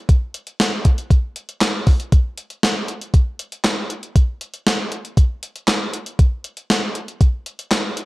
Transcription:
0.09 kick, closed hi-hat
0.34 closed hi-hat
0.47 closed hi-hat
0.60 snare, closed hi-hat
0.85 kick, closed hi-hat
0.98 closed hi-hat
1.10 kick, closed hi-hat
1.36 closed hi-hat
1.49 closed hi-hat
1.61 snare, clap, closed hi-hat
1.87 kick, open hi-hat
2.00 closed hi-hat
2.12 kick, closed hi-hat
2.38 closed hi-hat
2.50 closed hi-hat
2.63 snare, closed hi-hat
2.88 closed hi-hat
3.01 closed hi-hat
3.14 kick, closed hi-hat
3.39 closed hi-hat
3.52 closed hi-hat
3.64 snare, clap, closed hi-hat
3.90 closed hi-hat
4.03 closed hi-hat
4.16 kick, closed hi-hat
4.41 closed hi-hat
4.54 closed hi-hat
4.67 snare, closed hi-hat
4.92 closed hi-hat
5.05 closed hi-hat
5.17 kick, closed hi-hat
5.43 closed hi-hat
5.56 closed hi-hat
5.68 snare, clap, closed hi-hat
5.93 closed hi-hat
6.06 closed hi-hat
6.19 kick, closed hi-hat
6.44 closed hi-hat
6.57 closed hi-hat
6.70 snare, closed hi-hat
6.95 closed hi-hat
7.08 closed hi-hat
7.21 kick, closed hi-hat
7.46 closed hi-hat
7.59 closed hi-hat
7.71 snare, clap, closed hi-hat
7.97 closed hi-hat

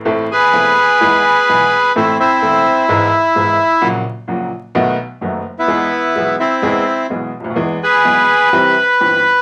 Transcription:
0.05 A1 A2 E3 A3 C4 A4
0.31 G#4 B4
0.53 E1 E2 E3 A3 C4 A4
1.01 E2 E3 G#3 B3 G#4
1.49 B1 B2 E3 G#3 B3 G#4
1.96 A1 A2 E3 A3 C4 E4 A4
2.19 C4 E4
2.42 E1 E2 E3 A3 C4 A4
2.88 G#1 G#2 E3 G#3 B3 G#4
3.35 G#1 G#2 E3 G#3 B3 G#4
3.81 A#1 A#2 C#3 F#3 A#3 F#4
4.28 A#1 A#2 C#3 F#3 A#3 F#4
4.75 B1 B2 D#3 A3 B3 F#4
5.21 F#1 F#2 D#3 A3 B3 F#4
5.59 B3 E4
5.68 E2 E3 G#3 B3 G#4
6.16 B1 B2 E3 G#3 B3 G#4
6.39 C4 E4
6.62 E2 E3 G#3 B3 G#4
7.10 B1 B2 E3 G#3 B3 G#4
7.40 C#2 D2
7.50 D#2
7.56 E2 E3 G#3 B3 G#4
7.83 G#4 B4
8.04 B1 B2 E3 G#3 B3 G#4
8.52 C2 C3 E3 G3 C4 G4
9.01 G1 G2 E3 G3 C4 G4

